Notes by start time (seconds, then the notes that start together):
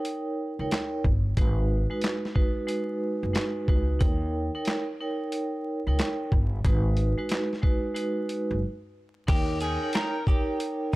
Already playing: D#4 A#4 C#5 G5
0.05 closed hi-hat
0.59 C#2 D#4 A#4 C#5 G5
0.71 snare, clap, closed hi-hat
1.04 G1, kick
1.37 G#1 G#3 D#4 F#4 B4, kick, closed hi-hat
1.90 G#3 D#4 F#4 B4
2.02 snare, clap, closed hi-hat
2.25 snare
2.34 G#3 D#4 F#4 B4, kick
2.67 G#3 D#4 F#4 B4, closed hi-hat
3.23 F#1
3.33 G#3 D#4 F#4 B4, snare, clap, closed hi-hat
3.68 C#2 G#3 D#4 F#4 B4, kick
3.99 D#2 D#4 A#4 C#5 G5, kick, closed hi-hat
4.55 D#4 A#4 C#5 G5
4.65 snare, clap, closed hi-hat
5.00 D#4 A#4 C#5 G5
5.32 closed hi-hat
5.87 C#2 D#4 A#4 C#5 G5
5.99 snare, clap, closed hi-hat
6.32 G1, kick
6.65 G#1 G#3 D#4 F#4 B4, kick, closed hi-hat
6.97 closed hi-hat
7.18 G#3 D#4 F#4 B4
7.29 snare, clap, closed hi-hat
7.53 snare
7.62 G#3 D#4 F#4 B4, kick
7.94 G#3 D#4 F#4 B4, closed hi-hat
8.29 closed hi-hat
8.51 F#1
9.27 D#2 D#4 G4 A#4 C#5 G5, kick, closed hi-hat, crash
9.60 C#4 D#4 G#4 G5, closed hi-hat, shaker
9.83 D#4 A#4 C#5 G5
9.93 A#4, finger snap, snare, clap, closed hi-hat
10.27 D#4 G4 A#4 C#5 G5, kick, shaker
10.60 closed hi-hat